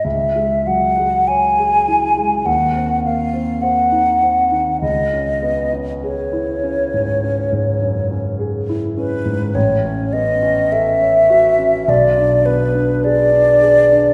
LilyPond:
<<
  \new Staff \with { instrumentName = "Flute" } { \time 4/4 \key cis \minor \tempo 4 = 51 e''8 fis''8 gis''4 ges''8 eis''8 ges''4 | dis''8. r16 cis''2 r8 b'8 | cis''8 dis''8 e''4 d''8 b'8 d''4 | }
  \new Staff \with { instrumentName = "Grand piano" } { \time 4/4 \key cis \minor cis,16 gis16 fis16 gis16 cis''16 gis'16 e'16 gis16 ees,16 c'16 ais16 c'16 c''16 ees'16 c'16 ees16 | cis,16 cis'16 b16 cis'16 gis'16 e'16 cis'16 gis,16 cis'16 gis,16 fis,16 cis'16 gis'16 e'16 cis'16 gis,16 | a,,16 cis'16 b16 cis'16 a'16 cis''16 fis'16 cis'16 b,,16 d'16 b16 d'16 gis'16 d'16 gis'16 d'16 | }
>>